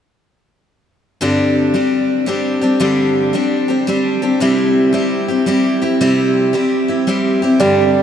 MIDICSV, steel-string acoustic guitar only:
0, 0, Header, 1, 2, 480
1, 0, Start_track
1, 0, Tempo, 533808
1, 1082, Time_signature, 3, 2, 24, 8
1, 7217, End_track
2, 0, Start_track
2, 0, Title_t, "Steel-string acoustic guitar"
2, 0, Program_c, 0, 25
2, 1087, Note_on_c, 0, 43, 73
2, 1089, Note_on_c, 0, 50, 63
2, 1093, Note_on_c, 0, 55, 64
2, 1095, Note_on_c, 0, 60, 83
2, 1098, Note_on_c, 0, 62, 73
2, 1101, Note_on_c, 0, 67, 80
2, 1559, Note_off_c, 0, 55, 0
2, 1562, Note_on_c, 0, 55, 48
2, 1564, Note_off_c, 0, 43, 0
2, 1565, Note_off_c, 0, 50, 0
2, 1565, Note_off_c, 0, 60, 0
2, 1566, Note_off_c, 0, 62, 0
2, 1569, Note_on_c, 0, 60, 53
2, 1576, Note_off_c, 0, 67, 0
2, 1577, Note_on_c, 0, 62, 52
2, 1579, Note_on_c, 0, 67, 54
2, 2031, Note_off_c, 0, 55, 0
2, 2035, Note_on_c, 0, 55, 62
2, 2037, Note_off_c, 0, 62, 0
2, 2041, Note_off_c, 0, 60, 0
2, 2045, Note_on_c, 0, 60, 58
2, 2048, Note_on_c, 0, 62, 55
2, 2052, Note_off_c, 0, 67, 0
2, 2056, Note_on_c, 0, 67, 61
2, 2340, Note_off_c, 0, 67, 0
2, 2348, Note_off_c, 0, 62, 0
2, 2351, Note_off_c, 0, 55, 0
2, 2351, Note_on_c, 0, 67, 49
2, 2356, Note_off_c, 0, 60, 0
2, 2359, Note_on_c, 0, 62, 40
2, 2365, Note_on_c, 0, 60, 41
2, 2372, Note_on_c, 0, 55, 42
2, 2510, Note_off_c, 0, 55, 0
2, 2510, Note_off_c, 0, 60, 0
2, 2514, Note_off_c, 0, 62, 0
2, 2514, Note_on_c, 0, 43, 73
2, 2517, Note_off_c, 0, 67, 0
2, 2518, Note_on_c, 0, 50, 73
2, 2521, Note_on_c, 0, 55, 76
2, 2521, Note_on_c, 0, 60, 74
2, 2525, Note_on_c, 0, 62, 78
2, 2528, Note_on_c, 0, 67, 77
2, 2991, Note_off_c, 0, 55, 0
2, 2995, Note_on_c, 0, 55, 50
2, 2997, Note_off_c, 0, 43, 0
2, 2999, Note_off_c, 0, 50, 0
2, 3000, Note_off_c, 0, 60, 0
2, 3000, Note_off_c, 0, 62, 0
2, 3004, Note_on_c, 0, 60, 52
2, 3011, Note_on_c, 0, 62, 63
2, 3012, Note_off_c, 0, 67, 0
2, 3016, Note_on_c, 0, 67, 61
2, 3300, Note_off_c, 0, 67, 0
2, 3306, Note_off_c, 0, 62, 0
2, 3310, Note_on_c, 0, 67, 44
2, 3311, Note_off_c, 0, 55, 0
2, 3315, Note_off_c, 0, 60, 0
2, 3317, Note_on_c, 0, 62, 38
2, 3326, Note_on_c, 0, 60, 38
2, 3330, Note_on_c, 0, 55, 35
2, 3470, Note_off_c, 0, 55, 0
2, 3479, Note_off_c, 0, 67, 0
2, 3480, Note_off_c, 0, 60, 0
2, 3481, Note_on_c, 0, 55, 68
2, 3482, Note_off_c, 0, 62, 0
2, 3491, Note_on_c, 0, 60, 62
2, 3496, Note_on_c, 0, 62, 62
2, 3500, Note_on_c, 0, 67, 62
2, 3784, Note_off_c, 0, 67, 0
2, 3789, Note_off_c, 0, 62, 0
2, 3794, Note_off_c, 0, 55, 0
2, 3795, Note_on_c, 0, 67, 49
2, 3796, Note_off_c, 0, 60, 0
2, 3800, Note_on_c, 0, 62, 44
2, 3807, Note_on_c, 0, 60, 45
2, 3814, Note_on_c, 0, 55, 37
2, 3955, Note_off_c, 0, 55, 0
2, 3959, Note_off_c, 0, 60, 0
2, 3960, Note_on_c, 0, 48, 72
2, 3961, Note_off_c, 0, 67, 0
2, 3963, Note_off_c, 0, 62, 0
2, 3966, Note_on_c, 0, 55, 68
2, 3969, Note_on_c, 0, 60, 76
2, 3971, Note_on_c, 0, 64, 83
2, 3976, Note_on_c, 0, 67, 76
2, 4426, Note_off_c, 0, 55, 0
2, 4429, Note_on_c, 0, 55, 54
2, 4433, Note_off_c, 0, 64, 0
2, 4436, Note_off_c, 0, 60, 0
2, 4440, Note_off_c, 0, 48, 0
2, 4440, Note_on_c, 0, 60, 61
2, 4444, Note_off_c, 0, 67, 0
2, 4444, Note_on_c, 0, 64, 53
2, 4447, Note_on_c, 0, 67, 60
2, 4740, Note_off_c, 0, 67, 0
2, 4748, Note_off_c, 0, 55, 0
2, 4750, Note_off_c, 0, 64, 0
2, 4751, Note_on_c, 0, 67, 44
2, 4753, Note_off_c, 0, 60, 0
2, 4761, Note_on_c, 0, 64, 35
2, 4770, Note_on_c, 0, 60, 36
2, 4907, Note_off_c, 0, 60, 0
2, 4912, Note_on_c, 0, 55, 50
2, 4915, Note_off_c, 0, 64, 0
2, 4918, Note_on_c, 0, 60, 70
2, 4919, Note_off_c, 0, 67, 0
2, 4926, Note_on_c, 0, 64, 66
2, 4932, Note_on_c, 0, 67, 73
2, 5219, Note_off_c, 0, 67, 0
2, 5226, Note_off_c, 0, 64, 0
2, 5229, Note_off_c, 0, 55, 0
2, 5230, Note_on_c, 0, 67, 49
2, 5232, Note_off_c, 0, 60, 0
2, 5237, Note_on_c, 0, 64, 44
2, 5245, Note_on_c, 0, 60, 39
2, 5394, Note_off_c, 0, 60, 0
2, 5398, Note_off_c, 0, 64, 0
2, 5398, Note_off_c, 0, 67, 0
2, 5401, Note_on_c, 0, 48, 71
2, 5403, Note_on_c, 0, 55, 77
2, 5404, Note_on_c, 0, 60, 74
2, 5409, Note_on_c, 0, 64, 81
2, 5415, Note_on_c, 0, 67, 75
2, 5861, Note_off_c, 0, 55, 0
2, 5868, Note_off_c, 0, 60, 0
2, 5872, Note_on_c, 0, 55, 49
2, 5874, Note_off_c, 0, 64, 0
2, 5879, Note_off_c, 0, 67, 0
2, 5879, Note_on_c, 0, 60, 59
2, 5880, Note_off_c, 0, 48, 0
2, 5885, Note_on_c, 0, 64, 52
2, 5890, Note_on_c, 0, 67, 58
2, 6178, Note_off_c, 0, 67, 0
2, 6187, Note_off_c, 0, 64, 0
2, 6189, Note_off_c, 0, 55, 0
2, 6189, Note_on_c, 0, 67, 38
2, 6193, Note_off_c, 0, 60, 0
2, 6198, Note_on_c, 0, 64, 43
2, 6206, Note_on_c, 0, 60, 32
2, 6352, Note_off_c, 0, 60, 0
2, 6357, Note_on_c, 0, 55, 58
2, 6358, Note_off_c, 0, 67, 0
2, 6360, Note_off_c, 0, 64, 0
2, 6363, Note_on_c, 0, 60, 66
2, 6371, Note_on_c, 0, 64, 61
2, 6377, Note_on_c, 0, 67, 66
2, 6661, Note_off_c, 0, 67, 0
2, 6672, Note_off_c, 0, 55, 0
2, 6672, Note_on_c, 0, 67, 50
2, 6673, Note_off_c, 0, 64, 0
2, 6675, Note_off_c, 0, 60, 0
2, 6683, Note_on_c, 0, 64, 40
2, 6690, Note_on_c, 0, 60, 44
2, 6827, Note_off_c, 0, 60, 0
2, 6829, Note_off_c, 0, 67, 0
2, 6830, Note_on_c, 0, 43, 72
2, 6831, Note_on_c, 0, 50, 71
2, 6835, Note_off_c, 0, 64, 0
2, 6837, Note_on_c, 0, 60, 64
2, 6838, Note_on_c, 0, 55, 70
2, 6839, Note_on_c, 0, 62, 69
2, 6840, Note_on_c, 0, 67, 74
2, 7217, Note_off_c, 0, 43, 0
2, 7217, Note_off_c, 0, 50, 0
2, 7217, Note_off_c, 0, 55, 0
2, 7217, Note_off_c, 0, 60, 0
2, 7217, Note_off_c, 0, 62, 0
2, 7217, Note_off_c, 0, 67, 0
2, 7217, End_track
0, 0, End_of_file